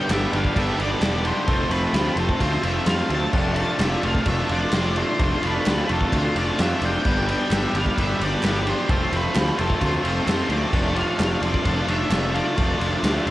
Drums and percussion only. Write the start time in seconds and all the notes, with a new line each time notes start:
0.09 snare, clap, ride
0.33 ride
0.44 kick
0.56 kick, ride
0.79 ride
1.01 snare, clap, ride
1.25 ride
1.48 kick, ride
1.71 ride
1.94 snare, clap, ride
2.17 ride
2.29 kick
2.40 kick, ride
2.63 ride
2.86 snare, clap, ride
3.10 ride
3.33 kick, crash
3.56 ride
3.79 snare, clap, ride
4.03 ride
4.15 kick
4.26 kick, ride
4.49 ride
4.72 snare, clap, ride
4.96 ride
5.19 kick, ride
5.43 ride
5.66 snare, clap, ride
5.89 ride
6.01 kick
6.12 kick, ride
6.36 ride
6.59 snare, clap, ride
6.82 ride
7.05 kick, crash
7.29 ride
7.51 snare, clap, ride
7.75 ride
7.86 kick
7.98 kick, ride
8.21 ride
8.43 snare, clap, ride
8.67 ride
8.89 kick, ride
9.13 ride
9.35 snare, clap, ride
9.59 ride
9.70 kick
9.81 kick, ride
10.05 ride
10.28 snare, clap, ride
10.50 ride
10.73 kick, crash
10.96 ride
11.19 snare, clap, ride
11.43 ride
11.54 kick
11.65 kick, ride
11.88 ride
12.11 snare, clap, ride
12.35 ride
12.58 kick, ride
12.81 ride
13.04 snare, clap, ride
13.27 ride